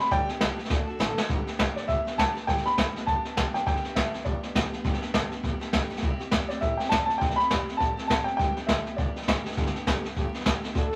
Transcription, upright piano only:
0.00 0.12 B5 loud
0.12 0.28 D5 medium
0.12 0.29 G5 loud
1.76 1.89 D5 medium
1.88 2.19 E5 medium
2.18 2.49 A5 loud
2.47 2.66 G5 loud
2.66 3.09 B5 loud
3.06 3.56 A5 medium
3.54 3.65 G5 medium
3.67 3.97 G5 loud
3.95 4.23 E5 medium
4.25 4.69 D5 medium
6.49 6.61 D5 medium
6.61 6.80 E5 medium
6.77 6.90 G5 medium
6.89 7.04 A5 loud
7.05 7.20 A5 medium
7.18 7.36 G5 medium
7.36 7.80 B5 loud
7.77 8.06 A5 medium
8.07 8.27 A5 medium
8.24 8.35 G5 loud
8.37 8.69 G5 medium
8.67 8.95 E5 medium
8.97 9.41 D5 medium

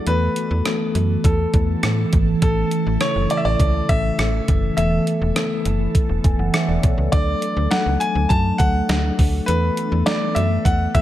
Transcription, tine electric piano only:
0.07 0.59 E3 medium
0.07 0.59 A3 medium
0.07 0.59 B3 medium
0.07 0.59 A4 medium
0.65 1.44 E3 medium
0.65 1.44 A3 medium
0.65 1.44 B3 medium
0.65 1.44 A4 medium
1.54 2.32 E3 medium
1.54 2.32 A3 medium
1.54 2.32 B3 medium
1.54 2.33 A4 medium
2.42 2.94 E3 medium
2.42 2.94 A3 medium
2.42 2.95 C#4 medium
2.42 2.95 A4 medium
3.01 3.80 C#3 medium
3.01 3.79 E3 medium
3.01 3.79 A3 medium
3.01 3.80 E4 medium
3.89 4.67 E3 medium
3.89 4.67 A3 medium
3.89 4.68 C#4 medium
3.89 4.68 A4 medium
4.77 5.29 E3 medium
4.77 5.29 A3 medium
4.77 5.30 B3 medium
4.77 5.30 A4 medium
5.35 6.14 E3 medium
5.35 6.14 A3 medium
5.35 6.14 B3 medium
5.35 6.15 A4 medium
6.24 6.38 G#5 medium
6.39 6.53 F#5 medium
6.53 6.68 E5 medium
6.68 6.82 D5 medium
6.83 6.97 C#5 medium
6.97 7.26 B4 medium
7.12 7.19 E3 medium
7.12 7.64 A3 medium
7.12 7.65 D4 medium
7.12 7.65 A4 medium
7.18 7.68 F#3 medium
7.71 8.49 F#3 medium
7.71 8.49 A3 medium
7.71 8.50 D4 medium
7.71 8.50 A4 medium
8.59 9.38 F#3 medium
8.59 9.38 A3 medium
8.59 9.38 D4 medium
8.59 9.38 A4 medium
9.47 10.00 E3 medium
9.47 10.00 A3 medium
9.47 10.00 B3 medium
9.47 10.00 A4 medium
10.07 10.85 E3 medium
10.07 10.85 A3 medium
10.07 10.86 B3 medium
10.07 10.86 A4 medium
10.94 11.02 E3 medium
10.94 11.02 A3 medium
10.94 11.02 B3 medium
10.94 11.02 A4 medium

